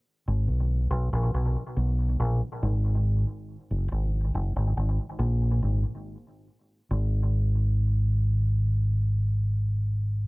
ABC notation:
X:1
M:4/4
L:1/16
Q:1/4=70
K:G#m
V:1 name="Fingered electric bass" clef=bass
z G,,, B,,,2 B,,, A,,, B,,, z B,,,2 A,,, z G,,,3 z | z F,,, G,,,2 F,,, G,,, G,,, z A,,,2 G,,, z4 z | G,,,16 |]